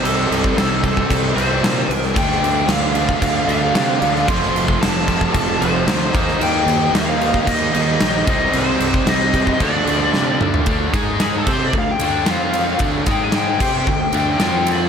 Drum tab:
CC |x-x-x-x-x-x-x-x-|x-x-x-x-x-x-x-x-|x-x-x-x-x-x-x-x-|x-x-x-x-x-x-x-x-|
RD |----------------|----------------|----------------|----------------|
SD |----o-------o--o|-o--o-------o--o|-o--o-------o--o|----o-------o---|
T2 |----------------|----------------|----------------|----------------|
FT |----------------|----------------|----------------|----------------|
BD |---o--ooo-------|o------oo-------|o--o--ooo-----o-|-------oo-----o-|

CC |x-x-x-x-x-x-----|------x---------|------x---------|
RD |----------------|x-x-x-----x-x-x-|x-x-x-----x-x-x-|
SD |----o-------o---|--o-o-------o---|--o-o-------o---|
T2 |--------------o-|----------------|----------------|
FT |---------------o|----------------|----------------|
BD |---o--ooo-------|o-o---o-o-------|o-o---o-o-------|